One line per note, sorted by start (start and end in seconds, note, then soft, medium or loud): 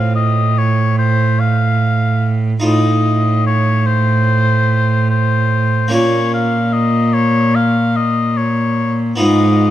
0.00 2.59 A2 medium
0.00 2.60 A2 medium
0.00 2.58 C4 soft
0.00 2.59 F4 soft
0.00 0.15 F5 medium
0.15 0.60 D#5 medium
0.58 0.98 C#5 medium
0.99 1.41 C5 medium
1.40 2.36 F5 medium
2.60 5.88 A2 medium
2.60 5.93 A2 medium
2.60 5.86 D#4 soft
2.60 5.87 F4 soft
2.64 3.42 D#5 medium
3.46 3.88 C#5 medium
3.86 5.10 C5 medium
5.10 5.90 C5 medium
5.88 9.19 A#2 medium
5.88 9.13 A#3 soft
5.88 9.14 C#4 medium
5.88 9.14 F4 soft
5.93 9.15 A#2 medium
5.93 6.33 C#5 medium
6.34 6.75 F5 medium
6.73 7.15 D#5 medium
7.14 7.57 C#5 medium
7.55 7.98 F5 medium
7.96 8.39 D#5 medium
8.37 9.01 C#5 medium
9.16 9.71 G#2 medium
9.16 9.71 B3 medium
9.16 9.71 D#4 medium
9.16 9.71 F4 soft
9.16 9.71 D#5 medium
9.20 9.71 G#2 medium